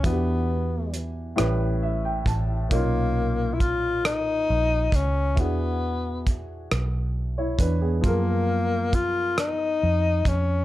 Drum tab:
HH |x-xx-x|x-xx-x|x-xx-x|x-xx-x|
SD |---r--|---r--|---r--|---r--|
BD |o----o|o-o--o|o-o--o|o-o--o|